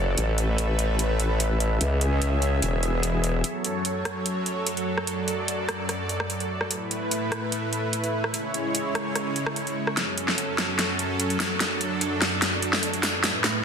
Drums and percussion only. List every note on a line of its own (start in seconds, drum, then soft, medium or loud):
0.18 closed hi-hat medium
0.38 closed hi-hat soft
0.58 closed hi-hat medium
0.79 closed hi-hat medium
0.99 closed hi-hat medium
1.20 closed hi-hat soft
1.40 closed hi-hat medium
1.60 closed hi-hat soft
1.81 closed hi-hat medium
2.01 closed hi-hat medium
2.22 closed hi-hat medium
2.42 closed hi-hat medium
2.62 closed hi-hat medium
2.83 closed hi-hat soft
3.03 closed hi-hat medium
3.24 closed hi-hat soft
3.44 closed hi-hat medium
3.64 closed hi-hat medium
3.85 closed hi-hat medium
4.05 cross-stick medium
4.05 closed hi-hat medium
4.26 closed hi-hat medium
4.46 closed hi-hat medium
4.67 closed hi-hat medium
4.77 closed hi-hat soft
4.98 cross-stick soft
5.07 closed hi-hat medium
5.28 closed hi-hat medium
5.48 closed hi-hat medium
5.69 cross-stick medium
5.69 closed hi-hat medium
5.89 cross-stick soft
5.89 closed hi-hat medium
6.09 closed hi-hat soft
6.20 cross-stick medium
6.30 closed hi-hat medium
6.40 closed hi-hat soft
6.61 cross-stick soft
6.71 closed hi-hat medium
6.91 closed hi-hat medium
7.11 closed hi-hat medium
7.32 cross-stick medium
7.32 closed hi-hat soft
7.52 closed hi-hat medium
7.73 closed hi-hat soft
7.93 closed hi-hat medium
8.04 closed hi-hat soft
8.24 cross-stick medium
8.34 closed hi-hat medium
8.54 closed hi-hat soft
8.75 closed hi-hat medium
8.95 cross-stick medium
8.95 closed hi-hat soft
9.15 cross-stick medium
9.15 closed hi-hat medium
9.36 closed hi-hat soft
9.46 cross-stick medium
9.56 closed hi-hat medium
9.67 closed hi-hat soft
9.87 cross-stick medium
9.97 snare soft
9.97 closed hi-hat medium
10.18 closed hi-hat medium
10.28 snare soft
10.38 closed hi-hat medium
10.58 snare soft
10.58 closed hi-hat medium
10.79 snare medium
10.79 closed hi-hat medium
10.99 closed hi-hat soft
11.20 closed hi-hat medium
11.30 closed hi-hat soft
11.40 snare medium
11.40 open hi-hat medium
11.60 snare medium
11.60 closed hi-hat medium
11.81 closed hi-hat medium
12.01 closed hi-hat medium
12.22 snare medium
12.22 closed hi-hat medium
12.42 snare medium
12.42 closed hi-hat medium
12.62 closed hi-hat medium
12.73 snare medium
12.83 closed hi-hat medium
12.93 closed hi-hat soft
13.03 snare medium
13.03 open hi-hat loud
13.24 snare medium
13.24 closed hi-hat medium
13.44 snare medium
13.44 closed hi-hat medium